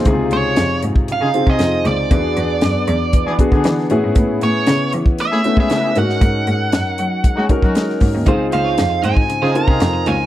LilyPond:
<<
  \new Staff \with { instrumentName = "Lead electric guitar" } { \time 4/4 \key des \major \tempo 4 = 117 r8 des''4 r8 f''8. ees''8. d''8~ | d''2~ d''8 r4. | r8 cis''4 r8 e''8. e''8. ges''8~ | ges''2~ ges''8 r4. |
r8 f''4 aes''4 bes''4 aes''8 | }
  \new Staff \with { instrumentName = "Clean electric guitar" } { \time 4/4 \key des \major r1 | r1 | r1 | r1 |
<ees' f' c''>16 r16 <ees' f' c''>16 <ees' f' des''>16 r8 <ees' f' c''>16 r8 <ees' f' c''>16 r4 <ees' f' des''>16 r16 | }
  \new Staff \with { instrumentName = "Horn section" } { \time 4/4 \key des \major r2 r16 <ees' f' aes'>16 r16 <ees' f' aes'>8. r8 | r2 r16 <b d' gis'>16 r16 <b d' gis'>8. r8 | r2 r16 <cis' e' gis'>16 r16 <cis' e' gis'>8. r8 | r2 r16 <des' ees' ges'>16 r16 <des' ees' ges'>8. r8 |
r2 r16 <ees' f' aes'>16 r16 <ees' f' aes'>8. r8 | }
  \new Staff \with { instrumentName = "Grand piano" } { \time 4/4 \key des \major <c ees' fes' f' aes'>4. r4 <c' ees' f' aes'>4 r8 | <b d' fis' gis'>4. r4 <b d' fis' gis'>4 <ces' cis' e' gis'>8~ | <ces' cis' e' gis'>4 r4. <a ces' cis' e'>4 <des' ees' ges' bes'>8~ | <des' ees' ges' bes'>4 r4. <des' ees' ges' bes'>4 r8 |
<c' ees' f' aes'>4. r4 <c' ees' f' bes'>4 r8 | }
  \new Staff \with { instrumentName = "Cello" } { \clef bass \time 4/4 \key des \major des,8 des,8 f,8 aes,8 des16 des16 r16 c16 f,8 des,8 | e,8 e,8 fis,8 e,8 e16 e16 r16 d16 e16 r16 a,16 gis,16 | a,8 a,8 cis8 e8 a16 a16 r16 gis16 cis8 aes,8 | aes,8 aes,8 ges,8 ges8 aes16 aes16 r16 ges16 aes16 r16 aes,16 ees,16 |
des,8 des,8 f,8 aes,8 des16 des16 r16 c16 f,8 des,8 | }
  \new DrumStaff \with { instrumentName = "Drums" } \drummode { \time 4/4 <hh bd>8 hh8 <hh sn>8 hh16 bd16 hh8 hh16 bd16 <hh sn>8 hh8 | <hh bd>8 hh8 <hh sn>8 hh8 <hh bd>8 <hh bd>16 bd16 <hh sn>16 sn16 hh8 | <hh bd>8 hh8 <hh sn>8 hh16 bd16 hh8 hh16 bd16 <hh sn>8 hh16 sn16 | <hh bd>8 hh8 <hh sn>8 hh8 <hh bd>8 <hh bd>16 bd16 <hh sn>16 sn16 <hho bd>8 |
<hh bd>8 hh8 <hh sn>8 hh16 bd16 hh8 hh16 bd16 <hh sn>8 hh8 | }
>>